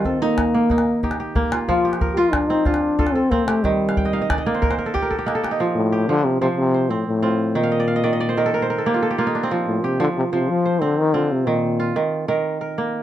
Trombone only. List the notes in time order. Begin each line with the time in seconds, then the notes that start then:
0.06 C4
0.22 A#3
1.69 F4
2.14 F4 G4
2.33 D4
2.49 D#4
2.66 D4
3.13 C4
3.31 A#3
3.46 A3
3.63 G3
5.75 A2
6.08 D3
6.25 C3
6.41 C3
6.57 C3
6.90 A2
7.07 A2
7.56 A#2
9.67 A2
9.84 C3
10.00 D3
10.17 C3
10.33 C3
10.49 F3
10.82 D3
10.99 D#3
11.15 D3
11.32 C3
11.47 A#2